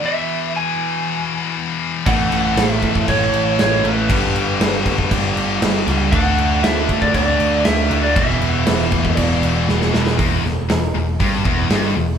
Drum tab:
CC |----------------|x-x-x-x-x-x-x-x-|x-x-x-x-x-x-x-x-|x-x-x-x-x-x-x-x-|
HH |----------------|----------------|----------------|----------------|
SD |----------------|----o-------o---|----o-------o---|----o-------o---|
BD |----------------|o-----ooo-------|o-----ooo-------|o-----ooo-------|

CC |x-x-x-x-x-x-----|----------------|
HH |----------------|o---o---o---o---|
SD |----o-------oooo|--o-o-------o---|
BD |o-----ooo-------|o-------o-o-----|